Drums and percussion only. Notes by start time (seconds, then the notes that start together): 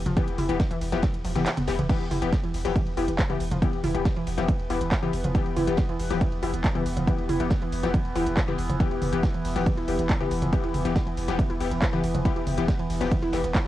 0.06 closed hi-hat, mid tom, ride
0.17 kick, closed hi-hat, ride
0.28 closed hi-hat, ride
0.38 open hi-hat, mid tom, ride
0.49 closed hi-hat, ride
0.60 kick, snare, closed hi-hat, ride
0.71 closed hi-hat, ride
0.81 open hi-hat, ride
0.92 snare, closed hi-hat, ride
1.03 kick, snare, closed hi-hat, ride
1.14 closed hi-hat, ride
1.24 open hi-hat, ride
1.36 snare, closed hi-hat, mid tom, ride
1.46 clap, closed hi-hat, ride
1.57 closed hi-hat, mid tom, ride
1.67 snare, open hi-hat, ride
1.79 closed hi-hat, mid tom, ride
1.89 kick, closed hi-hat, ride, crash
2.00 ride
2.11 open hi-hat, mid tom, ride
2.22 closed hi-hat, ride
2.33 kick, snare, closed hi-hat, ride
2.43 ride
2.54 open hi-hat, ride
2.65 snare, closed hi-hat, ride
2.76 kick, closed hi-hat, ride
2.86 ride
2.97 open hi-hat, ride
3.08 closed hi-hat, ride
3.19 kick, snare, clap, closed hi-hat, ride
3.30 mid tom, ride
3.40 open hi-hat, ride
3.51 closed hi-hat, mid tom, ride
3.62 kick, closed hi-hat, ride
3.73 ride
3.84 open hi-hat, mid tom, ride
3.95 closed hi-hat, ride
4.05 kick, snare, closed hi-hat, ride
4.16 ride
4.27 open hi-hat, ride
4.37 snare, closed hi-hat, ride
4.48 kick, closed hi-hat, ride
4.59 ride
4.70 open hi-hat, ride
4.81 closed hi-hat, ride
4.92 kick, snare, clap, closed hi-hat, ride
5.03 mid tom, ride
5.13 open hi-hat, ride
5.24 closed hi-hat, mid tom, ride
5.34 kick, closed hi-hat, ride
5.46 ride
5.56 open hi-hat, mid tom, ride
5.67 closed hi-hat, ride
5.77 kick, snare, closed hi-hat, ride
5.89 ride
5.99 open hi-hat, ride
6.10 snare, closed hi-hat, ride
6.21 kick, closed hi-hat, ride
6.32 ride
6.42 open hi-hat, ride
6.54 closed hi-hat, ride
6.64 kick, snare, clap, closed hi-hat, ride
6.75 mid tom, ride
6.86 open hi-hat, ride
6.97 closed hi-hat, mid tom, ride
7.07 kick, closed hi-hat, ride
7.18 ride
7.29 open hi-hat, mid tom, ride
7.40 closed hi-hat, ride
7.50 kick, snare, closed hi-hat, ride
7.62 ride
7.72 open hi-hat, ride
7.83 snare, closed hi-hat, ride
7.94 kick, closed hi-hat, ride
8.05 ride
8.15 open hi-hat, ride
8.26 closed hi-hat, ride
8.37 kick, snare, clap, closed hi-hat, ride
8.48 mid tom, ride
8.58 open hi-hat, ride
8.70 closed hi-hat, mid tom, ride
8.80 kick, closed hi-hat, ride
8.91 ride
9.02 open hi-hat, mid tom, ride
9.13 closed hi-hat, ride
9.23 kick, snare, closed hi-hat, ride
9.34 ride
9.45 open hi-hat, ride
9.56 snare, closed hi-hat, ride
9.66 kick, closed hi-hat, ride
9.77 ride
9.88 open hi-hat, ride
9.99 closed hi-hat, ride
10.09 kick, snare, clap, closed hi-hat, ride
10.21 mid tom, ride
10.31 open hi-hat, ride
10.42 closed hi-hat, mid tom, ride
10.53 kick, closed hi-hat, ride
10.64 ride
10.74 open hi-hat, mid tom, ride
10.85 closed hi-hat, ride
10.96 kick, snare, closed hi-hat, ride
11.07 ride
11.18 open hi-hat, ride
11.28 snare, closed hi-hat, ride
11.39 kick, closed hi-hat, ride
11.50 ride
11.61 open hi-hat, ride
11.72 closed hi-hat, ride
11.82 kick, snare, clap, closed hi-hat, ride
11.93 mid tom, ride
12.04 open hi-hat, ride
12.15 closed hi-hat, mid tom, ride
12.25 kick, closed hi-hat, ride
12.36 ride
12.47 open hi-hat, mid tom, ride
12.58 closed hi-hat, ride
12.69 kick, snare, closed hi-hat, ride
12.79 ride
12.90 open hi-hat, ride
13.01 snare, closed hi-hat, ride
13.12 kick, closed hi-hat, ride
13.22 ride
13.33 snare, open hi-hat, ride
13.44 closed hi-hat, ride
13.54 kick, snare, clap, closed hi-hat, ride